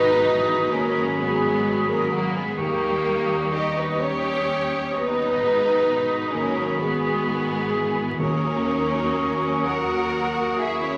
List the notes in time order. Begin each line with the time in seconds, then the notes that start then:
Already playing: G#1 G#2 D#3 F#3 G#3 B3 D#4 F#4 B4 B5 D#6
0.22 E3 F#3
0.69 D#3 F#3 A#3 C#4 A#4
1.16 G#3 B3 D#4 G#4
1.65 F#3
1.87 A#3 C#4 A#4
2.10 D#3 F#3 A#3 F#4
2.34 G#3 B3 G#4
2.58 D#2 D#3 G3 A#3 D#4 G4 C#6 D#6
3.07 C#4
3.52 G3 D#4 G4 D#5
3.75 B3 D#4 B4
3.98 C#4 D#4 G4 C#5
4.47 C#4
4.92 B3 D#4 B4
5.40 G#1 G#2 G#3 D#4 F#4 B5
5.87 B2 D#3
6.31 D#3 F#3 A#3 C#4 A#4
6.79 G#3 B3 F#4 G#4
7.26 D#3 B3
7.72 D#3 E3
8.19 D#2 D#3 F#3 A#3 C#4 F#4 A#4 C#6 D#6
8.68 C#4 D#4
9.17 A#3 C#4
9.65 A#3 F#4 A#4 F#5
10.11 C#4
10.58 A#3 E4 G#4 E5
10.81 C#4 E4 C#5